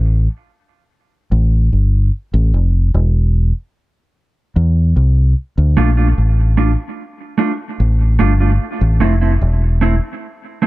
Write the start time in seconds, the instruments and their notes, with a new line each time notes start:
Already playing: fingered electric bass A1
1.32 fingered electric bass A1
1.73 fingered electric bass G1
2.34 fingered electric bass A1
2.54 fingered electric bass F1
2.94 fingered electric bass E1
4.56 fingered electric bass E2
4.96 fingered electric bass C2
5.58 fingered electric bass D2
5.77 fingered electric bass A#1, clean electric guitar A3 D4 F4
5.97 clean electric guitar A3 D4 F4
6.18 fingered electric bass A1
6.57 clean electric guitar A3 D4 F4
7.38 clean electric guitar A3 D4 F4
7.80 fingered electric bass A1
8.19 fingered electric bass G1, clean electric guitar A3 D4 F4
8.40 clean electric guitar A3 D4 F4
8.81 fingered electric bass A1
9.00 fingered electric bass F1, clean electric guitar A3 C4 E4
9.21 clean electric guitar A3 C4 E4
9.41 fingered electric bass E1
9.81 clean electric guitar A3 C4 E4
10.62 clean electric guitar A3 C4 E4